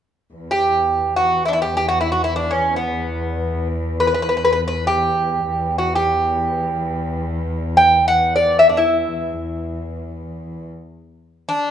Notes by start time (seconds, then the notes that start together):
0.32 E2
0.51 G4
1.16 F#4
1.45 D4 E4
1.53 E4
1.62 G4
1.77 G4
1.88 F#4
2.01 E4
2.12 F#4
2.24 E4
2.36 D4
2.51 C#4
2.76 B3
4.00 B4
4.07 B4
4.14 B4
4.22 B4
4.29 B4
4.37 B4
4.45 B4
4.53 B4
4.68 B4
4.87 G4
5.46 E2
5.78 F#4
5.95 G4
7.77 G5
8.08 F#5
8.36 D5
8.59 E5
8.69 D4
8.77 E4
11.49 D4